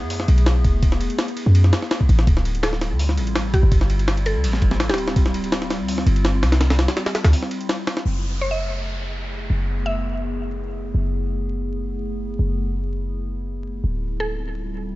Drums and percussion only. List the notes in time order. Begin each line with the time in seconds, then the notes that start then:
0.10 open hi-hat
0.20 snare
0.28 ride
0.38 ride
0.46 snare, ride
0.64 kick, ride
0.83 kick, ride
0.92 snare
1.01 ride
1.10 ride
1.19 snare, ride
1.28 ride
1.37 ride
1.55 ride
1.64 snare
1.73 snare, ride
1.82 snare
1.91 snare, ride
2.01 kick
2.09 ride
2.19 snare
2.27 kick, ride
2.37 snare
2.45 ride
2.55 ride
2.63 snare, ride
2.73 snare
2.81 snare, ride
2.99 open hi-hat
3.09 snare
3.17 ride
3.27 ride
3.36 snare, ride
3.54 kick, ride
3.72 kick, ride
3.81 snare
3.90 ride
3.99 ride
4.08 snare, ride
4.17 ride
4.26 ride
4.44 ride
4.53 snare
4.62 kick, ride
4.71 snare
4.80 snare, ride
4.90 snare, ride
4.94 snare, ride
4.98 ride
5.08 snare
5.16 kick, ride
5.26 snare
5.34 ride
5.44 ride
5.52 snare, ride
5.62 snare
5.70 snare, ride
5.88 open hi-hat
5.98 snare
6.07 ride
6.16 ride
6.25 snare, ride
6.43 snare, ride
6.52 snare, ride
6.61 snare, ride
6.70 snare, ride
6.79 snare, ride
6.88 snare, ride
6.97 snare, ride
7.06 snare, ride
7.15 snare, ride
7.24 snare, ride
7.33 open hi-hat
7.43 snare
7.51 ride
7.61 ride
7.69 snare, ride
7.87 snare, ride
7.97 snare